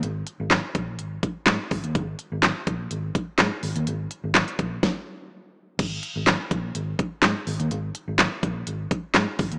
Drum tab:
CC |----------------|----------------|----------------|x---------------|
HH |x-x-x-x-x-x-x-ox|x-x-x-x-x-x-x-ox|x-x-xxx---------|x-x-x-x-x-x-x-ox|
CP |----x-------x---|----x-------x---|----x-----------|----x-------x---|
SD |----o-------o---|----o-------o---|----o---o-------|----o-------o---|
BD |------o---o---o-|o-----o---o-----|------o-o-------|o-----o---o-----|

CC |----------------|
HH |x-x-x-x-x-x-x-ox|
CP |----x-------x---|
SD |----o-------o---|
BD |------o---o---o-|